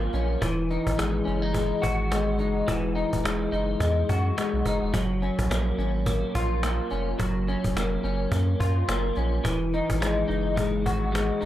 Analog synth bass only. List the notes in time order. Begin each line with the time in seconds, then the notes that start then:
0.14 A#1
0.42 E1
0.87 G#1
0.99 G#1
1.27 F#1
1.84 G#1
2.40 F#1
2.68 E1
3.13 E1
3.24 E1
3.52 F#1
3.80 E2
4.09 F#2
4.53 B1
4.65 F#1
4.82 E1
4.94 F#1
5.39 A#1
5.50 A#1
5.78 G#1
6.35 A#1
6.92 F1
7.20 F#1
7.65 F1
7.75 F1
8.04 F#1
8.32 F#2
8.60 F#2
8.88 F#1
9.17 A#1
9.45 E1
9.90 G#1
10.01 G#1
10.29 F#1
10.86 G#1